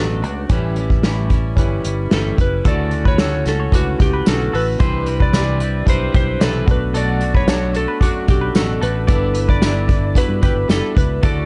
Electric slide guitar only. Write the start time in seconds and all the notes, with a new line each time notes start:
Already playing: A4
2.14 A4
2.41 B4
2.68 D5
3.08 C#5
3.49 A4
3.75 F#4
4.02 G4
4.28 A4
4.55 B4
5.22 D5
5.89 C5
6.16 C5
6.43 A4
6.71 B4
6.97 D5
7.37 C#5
7.77 A4
8.03 F#4
8.30 G4
8.56 A4
8.83 B4
9.50 D5
10.18 B4
10.44 B4
10.71 A4
10.98 B4
11.25 D5